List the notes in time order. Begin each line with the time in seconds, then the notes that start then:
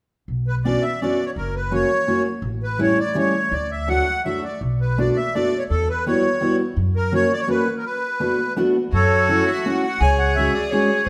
0.28 B1
0.48 B4
0.64 B3 C#4 D4 F#4 D5
0.82 E5
1.01 B3 C#4 D4 F#4 D5
1.25 C#5
1.36 F#1 A#4
1.56 B4
1.71 F#3 A#3 C#4 F#4 C#5
2.07 F#3 A#3 C#4 F#4
2.42 A1
2.63 B4
2.78 G3 A3 C#4 E4 C#5
3.00 D5
3.15 G3 A3 C#4 E4 C#5
3.52 D2 D5
3.71 E5
3.88 F#3 A3 D4 F#4 F#5
4.25 F#3 A3 D4 F#4 E5
4.44 D5
4.61 B1
4.81 B4
4.98 A3 B3 D4 F#4 D5
5.16 E5
5.34 A3 B3 D4 F#4 D5
5.58 C#5
5.70 E2 A4
5.89 B4
6.06 G3 B3 E4 F#4 C#5
6.41 G3 B3 E4 F#4
6.77 F#2
6.96 A#4
7.12 F#3 A#3 C#4 F#4 C#5
7.33 D5
7.40 C#5
7.47 F#3 A#3 C#4 F#4 B4
7.77 A#4
7.85 B4
8.20 A3 B3 D4 F#4
8.56 A3 B3 D4 F#4
8.92 F#2 F#4 A4 C#5
9.28 A3 C#4 E4 F#4
9.46 E5
9.65 A3 C#4 E4 F#4 F#5
9.83 F#5
10.01 C#2 G#4 C#5 G#5
10.18 F#5
10.35 G#3 C#4 F#4 G#4 E5
10.53 D5
10.70 G#3 C#4 F#4 G#4 C#5
11.05 G#4 C5